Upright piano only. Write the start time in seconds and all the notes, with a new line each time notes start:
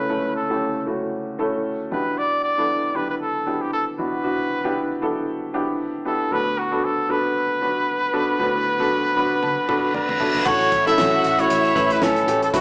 Already playing: C#2 C#3 A3 C#4 E4 A4 B4
0.09 A3 C#4 E4 A4
0.50 A3 C#4 E4 G4
0.86 A3 C#4 E4 F#4
1.39 A3 C#4 E4 A4
1.91 E2 B2 B3 D4 E4 G4
2.57 B3 D4 E4 A4
2.94 B3 D4 E4 G4
3.46 B3 D4 E4 G4
3.98 E2 B2 B3 D4 E4 F#4
4.23 B3 D4 E4 F#4
4.64 B3 D4 E4 G4
5.02 B3 D4 E4 A4
5.54 B3 D4 E4 G4
6.05 B3 D4 E4 G4
6.31 D2 A2 B3 D4 F#4 A4
6.71 B3 D4 F#4 A4
7.09 B3 D4 F#4 A4
7.61 B3 D4 F#4 B4
8.13 B3 D4 F#4 A4
8.39 D2 A2 B3 D4 F#4 B4
8.79 B3 D4 F#4 A4
9.16 B3 D4 F#4 B4 B5
9.42 A5
9.68 B3 D4 F#4 A4 F#5
9.94 D5
10.20 B3 D4 F#4 A4 E5
10.46 A2 E3 A3 C#4 E4 A4
10.86 A3 C#4 E4 A4
11.38 A3 C#4 E4 F#4
11.75 A3 C#4 E4 B4
12.27 A3 C#4 E4 G4
12.53 B2 F#3 B3 D4 F#4 B4